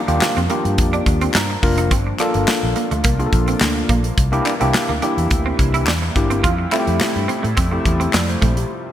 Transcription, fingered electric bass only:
0, 0, Header, 1, 2, 480
1, 0, Start_track
1, 0, Key_signature, -1, "major"
1, 0, Tempo, 566038
1, 1621, Time_signature, 4, 2, 24, 8
1, 7564, End_track
2, 0, Start_track
2, 0, Title_t, "Fingered electric bass"
2, 0, Program_c, 0, 33
2, 70, Note_on_c, 0, 39, 94
2, 152, Note_off_c, 0, 39, 0
2, 311, Note_on_c, 0, 41, 97
2, 393, Note_off_c, 0, 41, 0
2, 551, Note_on_c, 0, 43, 92
2, 665, Note_off_c, 0, 43, 0
2, 665, Note_on_c, 0, 41, 96
2, 841, Note_off_c, 0, 41, 0
2, 903, Note_on_c, 0, 39, 95
2, 1079, Note_off_c, 0, 39, 0
2, 1145, Note_on_c, 0, 43, 87
2, 1320, Note_off_c, 0, 43, 0
2, 1382, Note_on_c, 0, 29, 108
2, 1622, Note_off_c, 0, 29, 0
2, 1622, Note_on_c, 0, 31, 109
2, 1799, Note_off_c, 0, 31, 0
2, 1991, Note_on_c, 0, 31, 105
2, 2073, Note_off_c, 0, 31, 0
2, 2232, Note_on_c, 0, 34, 93
2, 2314, Note_off_c, 0, 34, 0
2, 2471, Note_on_c, 0, 38, 92
2, 2553, Note_off_c, 0, 38, 0
2, 2584, Note_on_c, 0, 36, 99
2, 2760, Note_off_c, 0, 36, 0
2, 2821, Note_on_c, 0, 34, 89
2, 2998, Note_off_c, 0, 34, 0
2, 3061, Note_on_c, 0, 38, 102
2, 3238, Note_off_c, 0, 38, 0
2, 3301, Note_on_c, 0, 34, 101
2, 3478, Note_off_c, 0, 34, 0
2, 3541, Note_on_c, 0, 36, 103
2, 3718, Note_off_c, 0, 36, 0
2, 3912, Note_on_c, 0, 36, 105
2, 3994, Note_off_c, 0, 36, 0
2, 4149, Note_on_c, 0, 38, 99
2, 4232, Note_off_c, 0, 38, 0
2, 4388, Note_on_c, 0, 40, 95
2, 4472, Note_off_c, 0, 40, 0
2, 4504, Note_on_c, 0, 38, 94
2, 4680, Note_off_c, 0, 38, 0
2, 4741, Note_on_c, 0, 36, 99
2, 4983, Note_off_c, 0, 36, 0
2, 4983, Note_on_c, 0, 40, 99
2, 5159, Note_off_c, 0, 40, 0
2, 5222, Note_on_c, 0, 31, 99
2, 5461, Note_on_c, 0, 41, 120
2, 5474, Note_off_c, 0, 31, 0
2, 5638, Note_off_c, 0, 41, 0
2, 5830, Note_on_c, 0, 41, 111
2, 5913, Note_off_c, 0, 41, 0
2, 6071, Note_on_c, 0, 43, 96
2, 6153, Note_off_c, 0, 43, 0
2, 6310, Note_on_c, 0, 45, 85
2, 6393, Note_off_c, 0, 45, 0
2, 6424, Note_on_c, 0, 41, 93
2, 6600, Note_off_c, 0, 41, 0
2, 6661, Note_on_c, 0, 40, 92
2, 6838, Note_off_c, 0, 40, 0
2, 6902, Note_on_c, 0, 41, 99
2, 7078, Note_off_c, 0, 41, 0
2, 7142, Note_on_c, 0, 34, 100
2, 7319, Note_off_c, 0, 34, 0
2, 7564, End_track
0, 0, End_of_file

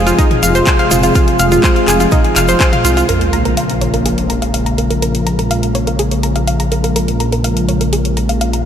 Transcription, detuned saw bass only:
0, 0, Header, 1, 2, 480
1, 0, Start_track
1, 0, Key_signature, -5, "minor"
1, 0, Tempo, 483871
1, 1144, Time_signature, 4, 2, 24, 8
1, 8584, End_track
2, 0, Start_track
2, 0, Title_t, "Detuned saw bass"
2, 0, Program_c, 0, 39
2, 0, Note_on_c, 0, 29, 103
2, 131, Note_off_c, 0, 29, 0
2, 424, Note_on_c, 0, 29, 81
2, 610, Note_off_c, 0, 29, 0
2, 904, Note_on_c, 0, 29, 83
2, 1090, Note_off_c, 0, 29, 0
2, 1384, Note_on_c, 0, 29, 102
2, 1570, Note_off_c, 0, 29, 0
2, 1864, Note_on_c, 0, 29, 107
2, 2050, Note_off_c, 0, 29, 0
2, 2344, Note_on_c, 0, 29, 75
2, 2530, Note_off_c, 0, 29, 0
2, 2824, Note_on_c, 0, 36, 90
2, 3010, Note_off_c, 0, 36, 0
2, 3063, Note_on_c, 0, 34, 78
2, 8584, Note_off_c, 0, 34, 0
2, 8584, End_track
0, 0, End_of_file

